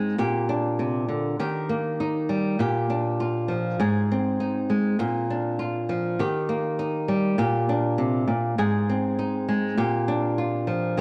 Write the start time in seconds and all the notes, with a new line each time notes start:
Already playing: G#2 G#3 C4 D#4 G#4
0.18 A#2 G4
0.49 D4
0.79 C3
1.08 D3
1.39 D#3 G4
1.69 A#3
2.00 D#4
2.29 G3
2.59 A#2 G4
2.90 D4
3.20 F4
3.48 F3
3.80 G#2 G#4
4.12 C4
4.40 D#4
4.70 G#3
4.99 A#2, muted nylon-string guitar stroke
5.30 D4
5.59 F4
5.89 F3
6.19 D#3 G4
6.49 A#3
6.79 D#4
7.08 G3
7.38 A#2 G4
7.69 D4
7.98 C3
8.27 A#2
8.58 G#2 G#4
8.89 C4
9.19 D#4
9.48 G#3
9.77 A#2 G4
10.08 D4
10.38 F4
10.67 F3
10.97 D#3